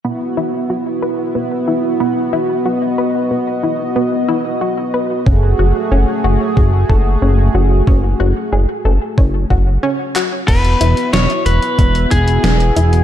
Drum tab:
CC |----------------|----------------|----------------|----------------|
HH |----------------|----------------|----------------|----------------|
CP |----------------|----------------|----------------|--------------x-|
SD |----------------|----------------|----------------|----------------|
BD |----------------|----------------|o-------o-o-----|o-------o-o-----|

CC |x---------------|
HH |xxxxxxxxxxxxxxxx|
CP |----------------|
SD |----o-------o---|
BD |o-------o-o-----|